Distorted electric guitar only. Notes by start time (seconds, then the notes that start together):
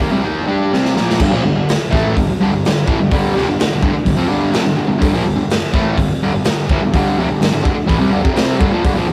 0.00 D#3 A#3
0.11 C3 G3
0.23 D#3 A#3 D#4
0.48 G3 D4 G4
0.72 C3 G3 C4
0.95 A#2 F3 A#3
1.20 G2 D3
1.30 A#2 F3
1.43 G2 D3
1.55 G2 D3
1.90 A2 E3 A3
2.16 G2 D3
2.29 muted distorted electric guitar stroke
2.41 G2 D3
2.53 G2 D3
2.67 G2 D3
2.86 A2 E3
3.00 G2 D3
3.11 G2 D3 G3
3.35 F2 C3
3.48 G2 D3
3.59 G2 D3
3.72 G2 D3
3.81 G2 D3
3.93 muted distorted electric guitar stroke
4.05 G2 D3
4.17 F3 C4
4.28 G2 D3 G3
4.52 F2 C3
4.64 G2 D3
4.77 G2 D3
4.87 G2 D3
4.98 G2 D3
5.13 A#2 F3
5.23 G2 D3
5.36 G2 D3
5.73 A2 E3 A3
5.97 G2 D3
6.08 muted distorted electric guitar stroke
6.22 G2 D3
6.33 G2 D3
6.45 G2 D3
6.70 A2 E3
6.82 G2 D3
6.93 G2 D3 G3
7.18 F2 C3
7.29 G2 D3
7.40 G2 D3
7.53 G2 D3
7.63 G2 D3
7.75 muted distorted electric guitar stroke
7.87 A2 E3
7.99 C3 G3
8.10 G2 D3
8.22 F2 C3
8.33 C3 G3 C4
8.59 G2 D3
8.70 A#2 F3
8.83 G2 D3
8.94 A#2 F3
9.09 G2 D3